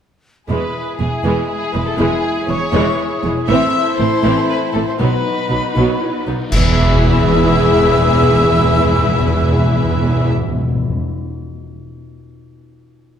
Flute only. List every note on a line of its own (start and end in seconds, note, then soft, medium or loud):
0.50 0.97 B5 medium
0.99 1.49 G#5 medium
1.50 1.73 G#5 medium
1.74 1.88 B5 medium
1.86 1.98 A5 medium
1.99 2.51 G#5 medium
2.50 3.25 C#6 medium
3.49 3.96 E6 loud
3.98 4.49 C6 medium
4.48 4.76 B5 medium
4.74 4.87 A5 medium
4.86 4.99 C6 medium
5.01 6.25 B5 medium
6.53 10.29 E6 loud